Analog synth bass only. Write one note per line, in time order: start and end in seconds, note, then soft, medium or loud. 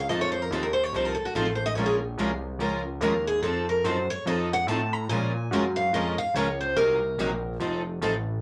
0.10 0.50 F2 medium
0.51 0.92 D#2 loud
0.93 1.17 C2 medium
1.18 1.27 C2 soft
1.34 1.75 A1 medium
1.76 2.17 A#1 medium
2.18 2.58 C2 medium
2.59 3.00 C#2 medium
3.01 3.41 D#2 loud
3.42 3.83 F2 medium
3.84 4.09 F#2 medium
4.10 4.18 F#2 soft
4.26 4.66 F2 medium
4.67 5.08 A2 loud
5.09 5.50 A#2 medium
5.51 5.92 F#2 loud
5.93 6.17 F2 medium
6.19 6.27 F2 soft
6.34 6.75 C#2 medium
6.76 7.17 C2 loud
7.18 7.58 A#1 loud
7.59 8.00 F1 medium
8.01 8.41 A1 loud